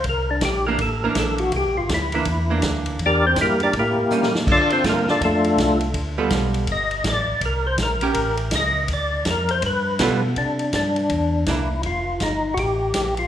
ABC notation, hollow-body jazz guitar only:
X:1
M:4/4
L:1/8
Q:"Swing" 1/4=163
K:Cmix
V:1 name="Hollow-body jazz guitar"
z3 [E,B,D] z [E,B,D]3 | z3 [E,B,D] z [E,B,D]3 | z6 [G,B,^C] z | z2 [D,A,CF] z4 z |
z [G,=B,FA]3 z4 | z3 [_DGB]3 z2 | z6 [G,=B,FA] z | z6 [E,B,D] z |
z8 |]